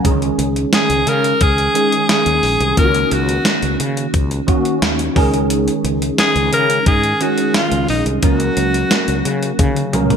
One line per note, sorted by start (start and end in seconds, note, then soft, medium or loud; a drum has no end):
0.04 0.30 C#2 medium
0.04 0.11 D3 medium
0.04 0.88 G#3 medium
0.04 0.89 C#4 medium
0.04 0.89 G#4 medium
0.04 kick loud
0.04 closed hi-hat loud
0.10 0.91 D#3 medium
0.22 closed hi-hat soft
0.38 0.64 C#2 medium
0.38 closed hi-hat medium
0.56 closed hi-hat medium
0.73 1.10 G#4 medium
0.73 snare loud
0.73 closed hi-hat medium
0.90 1.03 C#2 medium
0.90 closed hi-hat medium
1.07 1.32 C#3 medium
1.07 1.44 A#4 loud
1.07 closed hi-hat medium
1.24 closed hi-hat soft
1.41 1.67 C#2 medium
1.41 2.10 G#4 medium
1.41 kick medium
1.41 closed hi-hat medium
1.58 closed hi-hat soft
1.74 2.38 D#3 medium
1.74 2.38 G#3 medium
1.74 2.38 C#4 medium
1.74 2.38 G#4 medium
1.74 closed hi-hat medium
1.92 closed hi-hat soft
2.09 2.74 G#4 medium
2.09 snare loud
2.09 closed hi-hat medium
2.26 2.39 D#2 medium
2.26 closed hi-hat medium
2.43 2.56 A#1 medium
2.43 open hi-hat medium
2.60 2.73 C2 medium
2.60 closed hi-hat medium
2.77 3.03 C#2 loud
2.77 3.61 D#3 medium
2.77 3.61 A#3 medium
2.77 3.61 C#4 medium
2.77 2.84 F4 medium
2.77 3.14 A#4 loud
2.77 kick loud
2.77 closed hi-hat loud
2.84 3.65 F#4 medium
2.94 closed hi-hat soft
3.11 3.37 C#2 medium
3.11 3.80 F#4 medium
3.11 closed hi-hat medium
3.29 closed hi-hat medium
3.45 snare loud
3.45 closed hi-hat medium
3.62 3.75 C#2 medium
3.62 closed hi-hat medium
3.80 4.05 C#3 medium
3.80 closed hi-hat medium
3.97 closed hi-hat soft
4.14 4.39 C#2 medium
4.14 kick loud
4.14 closed hi-hat medium
4.31 closed hi-hat soft
4.47 5.10 D#3 medium
4.47 5.11 A#3 medium
4.47 5.11 C#4 medium
4.47 5.11 F#4 medium
4.47 kick medium
4.47 closed hi-hat medium
4.65 closed hi-hat soft
4.82 5.08 D#2 medium
4.82 snare loud
4.82 closed hi-hat medium
4.99 closed hi-hat medium
5.16 5.67 C#2 medium
5.16 6.25 D#3 loud
5.16 6.25 G#3 medium
5.16 6.25 C#4 medium
5.16 6.26 G#4 loud
5.16 kick loud
5.16 open hi-hat medium
5.34 closed hi-hat medium
5.50 closed hi-hat loud
5.68 closed hi-hat soft
5.84 6.10 C#2 medium
5.84 closed hi-hat medium
6.02 closed hi-hat medium
6.18 6.51 G#4 medium
6.18 snare medium
6.18 closed hi-hat medium
6.35 6.48 C#2 medium
6.35 closed hi-hat soft
6.52 6.78 C#3 medium
6.52 6.85 A#4 loud
6.52 closed hi-hat medium
6.70 closed hi-hat soft
6.86 7.12 G#2 medium
6.86 7.24 G#4 loud
6.86 kick loud
6.86 closed hi-hat medium
7.04 closed hi-hat soft
7.20 7.83 D#3 medium
7.20 7.84 G#3 medium
7.20 7.84 C#4 medium
7.20 7.55 F#4 medium
7.20 7.84 G#4 medium
7.20 closed hi-hat medium
7.38 closed hi-hat soft
7.54 7.87 F4 medium
7.54 snare loud
7.54 closed hi-hat medium
7.72 7.84 C#2 medium
7.72 closed hi-hat medium
7.88 8.02 A#1 medium
7.88 8.05 D#4 medium
7.88 open hi-hat medium
8.06 8.19 C2 medium
8.06 closed hi-hat medium
8.23 8.48 C#2 medium
8.23 9.07 F#3 medium
8.23 9.07 A#3 medium
8.23 9.07 C#4 medium
8.23 9.56 F#4 medium
8.23 9.07 A#4 medium
8.23 kick loud
8.23 closed hi-hat loud
8.40 closed hi-hat soft
8.57 8.83 C#2 medium
8.57 closed hi-hat medium
8.74 closed hi-hat medium
8.91 snare medium
8.91 closed hi-hat medium
9.08 9.21 C#2 medium
9.08 closed hi-hat soft
9.25 9.51 C#3 medium
9.25 closed hi-hat medium
9.43 closed hi-hat soft
9.59 9.95 C#3 loud
9.59 kick medium
9.59 closed hi-hat medium
9.59 high tom medium
9.76 closed hi-hat soft
9.93 10.17 C#2 medium
9.93 10.17 F#3 medium
9.93 10.17 A#3 medium
9.93 10.17 C#4 medium
9.93 10.17 A#4 medium
9.93 closed hi-hat medium
9.93 mid tom medium
10.10 closed hi-hat soft
10.10 mid tom medium